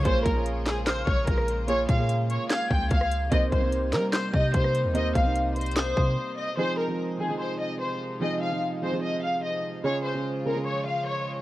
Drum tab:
HH |x---x---x---x---x-------x---x---|x---x---x---x---x-------x---x---|x---x---x---x---x-------x---x---|x---x---x---xxxxx---------------|
CP |------------x---x---------------|----------------x---------------|------------x---x---------------|----------------x---------------|
SD |------------o---o---------r-----|----------------o---------r-----|------------o---o---------r-----|----------------o---------------|
BD |o---o---------------o---o-------|----o---------------o---o-------|o---o---------------o---o-------|----o---------------o-----------|

HH |--------------------------------|--------------------------------|--------------------------------|
CP |--------------------------------|--------------------------------|--------------------------------|
SD |--------------------------------|--------------------------------|--------------------------------|
BD |--------------------------------|--------------------------------|--------------------------------|